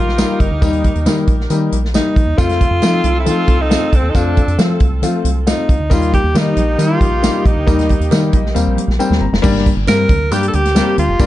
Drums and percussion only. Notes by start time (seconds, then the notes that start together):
0.09 snare
0.18 snare, closed hi-hat, tambourine
0.40 kick, closed hi-hat
0.62 kick, closed hi-hat, tambourine
0.73 closed hi-hat
0.84 kick, closed hi-hat
0.95 closed hi-hat
1.06 snare, closed hi-hat, tambourine
1.27 kick, closed hi-hat
1.40 snare
1.50 closed hi-hat, tambourine
1.72 closed hi-hat
1.85 snare
1.94 snare, closed hi-hat, tambourine
2.16 kick, closed hi-hat
2.38 kick, closed hi-hat, tambourine, muted conga
2.49 snare, closed hi-hat
2.61 kick, closed hi-hat, muted conga
2.82 snare, closed hi-hat, tambourine, high conga
3.04 closed hi-hat, low conga
3.26 closed hi-hat, tambourine, low conga
3.48 kick, closed hi-hat
3.71 snare, closed hi-hat, tambourine, high conga
3.81 high conga
3.93 kick, closed hi-hat
4.14 kick, closed hi-hat, tambourine, muted conga
4.37 kick, closed hi-hat, muted conga
4.48 closed hi-hat
4.59 snare, closed hi-hat, tambourine, high conga
4.80 kick, closed hi-hat, muted conga, low conga
5.03 closed hi-hat, tambourine, low conga
5.25 closed hi-hat, low conga
5.47 snare, closed hi-hat, tambourine, high conga
5.57 high conga
5.69 kick, closed hi-hat
5.91 kick, closed hi-hat, tambourine, muted conga
6.02 closed hi-hat
6.13 kick, closed hi-hat, muted conga
6.35 snare, closed hi-hat, tambourine, high conga
6.57 closed hi-hat, muted conga, low conga
6.79 closed hi-hat, tambourine, low conga
7.01 kick, closed hi-hat
7.23 snare, closed hi-hat, tambourine, high conga
7.34 high conga
7.46 kick, closed hi-hat
7.67 kick, closed hi-hat, tambourine, muted conga
7.79 snare, closed hi-hat
7.89 kick, closed hi-hat, muted conga
8.01 closed hi-hat
8.11 snare, closed hi-hat, tambourine, high conga
8.33 kick, closed hi-hat, muted conga, low conga
8.46 snare
8.55 closed hi-hat, tambourine, low conga
8.78 closed hi-hat, low conga
8.90 snare
9.00 tambourine, high conga
9.10 snare, high conga
9.34 snare
9.44 kick, crash, tambourine, muted conga
9.56 snare
9.66 kick, closed hi-hat, muted conga
9.87 snare, closed hi-hat, tambourine, high conga
10.09 kick, closed hi-hat, low conga
10.31 closed hi-hat, tambourine, low conga
10.43 closed hi-hat
10.53 closed hi-hat
10.65 snare, closed hi-hat
10.76 snare, closed hi-hat, tambourine, high conga
10.86 high conga
10.98 closed hi-hat
11.19 kick, closed hi-hat, tambourine, muted conga